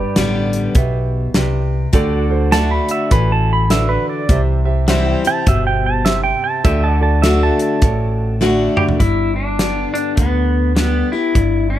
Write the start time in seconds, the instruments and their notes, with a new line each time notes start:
Already playing: steel-string acoustic guitar G2, grand piano G4 B4 D5, pedal steel guitar G4 B4 D5
0.16 upright bass A1, steel-string acoustic guitar D3 G3 B3 G4, grand piano G4 B4 D5, snare, closed hi-hat
0.53 closed hi-hat
0.75 upright bass B1, steel-string acoustic guitar B2, grand piano G4 B4 E5, kick, closed hi-hat
1.34 upright bass C2, steel-string acoustic guitar C3, grand piano G4 B4 D5, snare, closed hi-hat
1.93 upright bass D2, steel-string acoustic guitar D3, grand piano F#4 A4 D5, pedal steel guitar G4 A4 D5, kick, closed hi-hat
2.14 pedal steel guitar F#4
2.30 grand piano F#4 A4 C5
2.52 steel-string acoustic guitar D3 A3 D4 F#4, grand piano F#4 A4 D5, pedal steel guitar A5, snare, closed hi-hat
2.71 pedal steel guitar B5
2.89 pedal steel guitar E5, closed hi-hat
3.11 upright bass A1, steel-string acoustic guitar E3, grand piano F#4 A4 D5, pedal steel guitar B4, kick, closed hi-hat
3.32 pedal steel guitar A5
3.53 pedal steel guitar B5
3.70 steel-string acoustic guitar D3, grand piano F#4 A4 B4, pedal steel guitar E5, snare, closed hi-hat
3.89 pedal steel guitar B4
4.09 pedal steel guitar D5
4.29 upright bass C2, steel-string acoustic guitar C3, grand piano G4 C5 E5, kick, closed hi-hat
4.65 grand piano G4 C5 E5
4.88 steel-string acoustic guitar E3 G3 C4 E4, pedal steel guitar F#4 C5 E5, grand piano G4 C5 E5, snare, closed hi-hat
5.08 pedal steel guitar G4
5.24 steel-string acoustic guitar C4 E4, pedal steel guitar A5, closed hi-hat
5.46 upright bass G1, steel-string acoustic guitar B2, grand piano G4 C5 E5, pedal steel guitar E5, kick, closed hi-hat
5.67 pedal steel guitar G5
5.86 pedal steel guitar A5
6.05 steel-string acoustic guitar C3, grand piano G4 C5 E5, pedal steel guitar E5, snare, closed hi-hat
6.24 pedal steel guitar G5
6.44 pedal steel guitar A5
6.64 upright bass D2, steel-string acoustic guitar D3, grand piano F#4 A4 D5, pedal steel guitar G4 A4 E5, kick, closed hi-hat
6.84 pedal steel guitar F#4 A5
6.93 pedal steel guitar D5
7.00 grand piano F#4 A4 D5, pedal steel guitar A5
7.22 steel-string acoustic guitar D3 A3 D4 F#4, grand piano F#4 A4 D5, pedal steel guitar E5, snare, closed hi-hat
7.43 pedal steel guitar A5
7.59 pedal steel guitar A5, closed hi-hat
7.82 upright bass A1, steel-string acoustic guitar A2, grand piano F#4 A4 D5, kick, closed hi-hat
8.41 steel-string acoustic guitar D3 A3 D4 F#4, grand piano F#4 A4 D5 F#5, snare
8.77 pedal steel guitar G4, grand piano B5, mid tom
8.89 floor tom
9.00 upright bass G1, steel-string acoustic guitar G2, pedal steel guitar E4, kick, closed hi-hat
9.36 pedal steel guitar D4
9.59 steel-string acoustic guitar D3 G3 B3 G4, snare, closed hi-hat
9.94 pedal steel guitar D4, closed hi-hat
10.16 upright bass D2, steel-string acoustic guitar D3, pedal steel guitar B3, kick, closed hi-hat
10.76 steel-string acoustic guitar D3 G3 B3 G4, pedal steel guitar B3, snare, closed hi-hat
11.12 steel-string acoustic guitar B3 G4, pedal steel guitar E4
11.35 upright bass G1, steel-string acoustic guitar G2, kick, closed hi-hat
11.70 pedal steel guitar D4